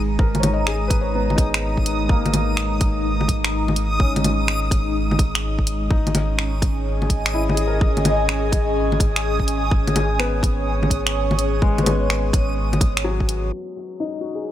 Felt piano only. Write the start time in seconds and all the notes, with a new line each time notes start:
Already playing: G#4 B4
0.19 A#4
0.40 C#5
0.54 D#5
0.67 G#4
0.88 B4
1.01 C#5
1.15 B3
1.36 D#4
2.10 A#3
4.00 C#4
5.91 D#4
7.34 E4
7.54 G#4
7.68 A#4
10.19 B3
11.62 G#3
11.83 B3
13.04 F#3
14.00 D#4
14.21 F#4
14.35 G#4